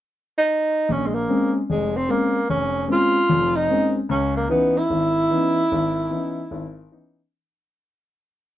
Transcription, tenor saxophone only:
0.38 0.93 D#4 medium
0.92 1.08 C#4 medium
1.06 1.16 G#3 medium
1.15 1.55 A#3 medium
1.71 1.99 G#3 medium
1.97 2.12 C4 medium
2.10 2.49 A#3 medium
2.50 2.87 C#4 medium
2.92 3.58 F4 loud
3.56 3.96 D#4 medium
4.11 4.35 C#4 medium
4.37 4.49 A#3 medium
4.51 4.80 B3 medium
4.78 6.91 E4 loud

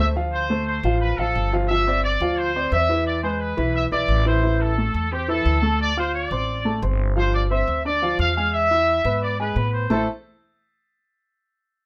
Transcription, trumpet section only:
0.33 0.65 C5 loud
0.67 0.99 C5 medium
1.01 1.17 B4 medium
1.18 1.52 A4 loud
1.68 2.01 E5 loud
2.03 2.35 D5 loud
2.38 2.72 C5 loud
2.72 3.04 E5 loud
3.07 3.23 D5 medium
3.23 3.39 C5 medium
3.40 3.75 B4 medium
3.75 3.83 E5 loud
3.93 4.24 D5 medium
4.26 4.58 C5 medium
4.61 5.12 A4 medium
5.12 5.29 G4 medium
5.30 5.77 A4 loud
5.81 5.96 D5 loud
5.98 6.13 C5 loud
6.15 6.79 D5 loud
7.18 7.33 C5 loud
7.35 7.42 D5 medium
7.51 7.83 E5 medium
7.85 8.17 D5 loud
8.19 8.35 F5 loud
8.36 8.52 F5 medium
8.53 9.17 E5 loud
9.22 9.38 D5 medium
9.39 9.71 B4 medium
9.73 10.04 C5 medium
9.91 10.06 A4 medium

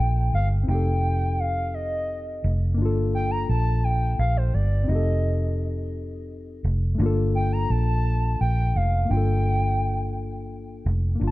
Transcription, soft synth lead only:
0.00 0.34 G5 loud
0.35 0.49 F5 loud
0.69 1.41 G5 medium
1.40 1.76 F5 loud
1.74 2.52 D#5 medium
3.15 3.32 G5 medium
3.31 3.48 A#5 medium
3.49 3.85 A5 loud
3.84 4.19 G5 loud
4.19 4.38 F5 loud
4.37 4.55 C5 medium
4.54 4.90 D5 medium
4.88 5.67 D#5 medium
7.35 7.54 G5 medium
7.52 7.72 A#5 loud
7.70 8.40 A5 loud
8.41 8.78 G5 loud
8.76 9.10 F5 medium
9.11 10.46 G5 loud

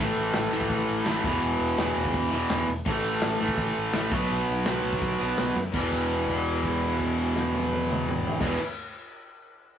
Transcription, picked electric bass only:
0.00 0.11 A1 loud
0.16 0.29 A1 medium
0.34 0.47 A1 medium
0.52 0.65 A1 medium
0.70 0.83 A1 loud
0.88 1.00 A1 medium
1.07 1.19 A1 medium
1.24 1.37 E1 medium
1.41 1.54 E1 loud
1.59 1.72 E1 medium
1.78 1.90 E1 loud
1.96 2.09 E1 medium
2.14 2.26 E1 loud
2.30 2.44 E1 medium
2.50 2.62 E1 medium
2.68 2.80 E1 medium
2.86 2.99 A1 loud
3.02 3.15 A1 medium
3.21 3.34 A1 medium
3.39 3.52 A1 medium
3.57 3.70 A1 loud
3.76 3.88 A1 medium
3.93 4.06 A1 medium
4.11 4.24 B1 medium
4.29 4.42 B1 loud
4.48 4.61 B1 medium
4.65 4.78 B1 medium
4.83 4.96 B1 medium
5.01 5.14 B1 medium
5.20 5.32 B1 medium
5.38 5.50 B1 medium
5.56 5.69 F#2 medium
5.74 8.32 E1 medium
8.41 8.56 E1 medium

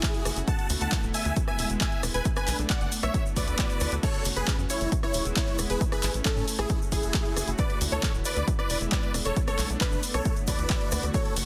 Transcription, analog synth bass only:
0.25 0.32 F#1 loud
0.36 0.44 F#1 medium
0.70 0.77 D2 loud
0.81 0.88 D2 medium
1.03 1.10 D1 medium
1.25 1.32 D2 medium
1.59 1.66 E1 loud
1.70 1.77 E1 medium
2.03 2.10 E1 medium
2.14 2.21 E1 medium
2.48 2.55 B1 medium
2.59 2.66 B1 medium
2.81 2.88 F#1 medium
3.03 3.10 B1 medium
3.37 3.44 D2 loud
3.48 3.55 D2 medium
3.81 3.88 D2 medium
3.92 3.99 D2 medium
4.25 4.32 F#1 medium
4.36 4.44 F#1 medium
4.59 4.66 F#2 medium
4.81 4.88 F#1 medium
5.14 5.21 E1 medium
5.25 5.32 E1 medium
5.59 5.66 E1 medium
5.70 5.77 E1 medium
6.03 6.10 A1 medium
6.14 6.21 A1 medium
6.37 6.44 A2 medium
6.59 6.66 A1 medium
6.92 6.99 F#1 medium
7.03 7.10 F#1 medium
7.37 7.44 F#1 medium
7.48 7.55 F#1 medium
7.81 7.88 D2 loud
7.92 7.99 D2 medium
8.14 8.21 D1 medium
8.37 8.44 D2 medium
8.70 8.77 E1 loud
8.81 8.88 E1 medium
9.14 9.21 E1 medium
9.25 9.32 E1 medium
9.59 9.66 B1 loud
9.70 9.77 B1 medium
9.92 9.99 F#1 medium
10.14 10.21 B1 medium
10.48 10.55 D2 loud
10.59 10.66 D2 medium
10.92 10.99 D2 loud
11.03 11.10 D2 medium
11.37 11.44 F#1 loud

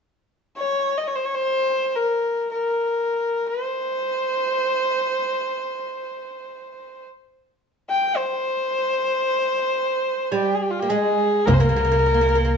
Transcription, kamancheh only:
0.57 0.99 C#5 medium
0.98 1.09 D#5 medium
1.07 1.17 C#5 medium
1.16 1.27 C5 medium
1.25 1.36 C#5 medium
1.35 1.97 C5 medium
1.95 2.51 A#4 medium
2.51 3.49 A#4 medium
3.47 7.05 C5 medium
7.90 8.18 G5 medium
8.17 10.32 C5 medium
10.33 10.56 G4 medium
10.55 10.64 G#4 medium
10.63 10.72 G4 medium
10.71 10.81 F4 medium
10.80 10.91 G4 medium
10.89 11.47 G#4 medium
11.46 11.55 A#4 medium
11.54 11.62 C5 medium
11.61 12.57 A#4 loud

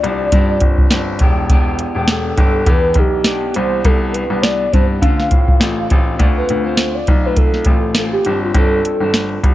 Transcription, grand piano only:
0.04 0.27 C2 medium
0.32 0.56 G2 loud
0.61 0.85 G1 medium
0.91 1.20 G1 medium
1.21 1.81 E1 medium
1.95 2.29 E1 medium
2.38 2.61 G1 medium
2.67 2.96 E2 loud
2.96 3.43 B1 medium
3.56 3.79 C2 medium
3.85 4.21 C2 loud
4.30 4.64 C2 medium
4.74 4.97 G2 medium
5.02 5.26 D3 loud
5.31 5.55 A2 medium
5.60 5.84 A1 medium
5.91 6.14 A1 medium
6.19 6.43 D2 loud
6.50 6.97 D2 medium
7.08 7.67 B1 medium
7.66 8.13 A1 medium
8.26 8.49 G1 medium
8.54 8.78 G1 loud
9.00 9.34 G1 medium
9.44 9.54 C2 medium

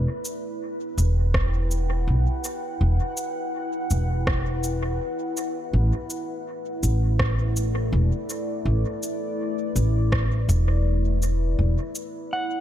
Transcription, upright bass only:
0.98 2.04 E1 medium
2.07 2.24 B1 medium
2.81 2.97 E1 medium
3.91 4.97 E1 medium
5.73 5.90 A1 medium
6.83 7.89 A1 medium
7.92 8.09 E1 medium
8.65 8.82 A1 medium
9.76 10.48 A1 medium
10.49 11.55 E1 medium
11.59 11.75 E1 medium

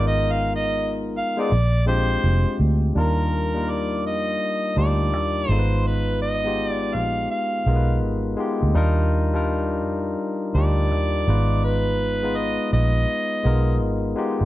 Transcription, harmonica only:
0.08 0.33 D#5 loud
0.32 0.55 F5 loud
0.56 0.89 D#5 loud
1.17 1.41 F5 medium
1.40 1.87 D5 loud
1.88 2.56 C5 loud
2.98 3.72 A#4 medium
3.70 4.05 D5 medium
4.07 4.73 D#5 medium
4.78 5.50 D5 medium
5.50 5.88 C5 medium
5.87 6.21 B4 medium
6.22 6.69 D#5 loud
6.69 6.96 D5 loud
6.94 7.30 F5 medium
7.31 7.98 F5 medium
10.55 11.66 D5 medium
11.64 12.38 B4 medium
12.37 12.72 D#5 loud
12.73 13.77 D#5 loud

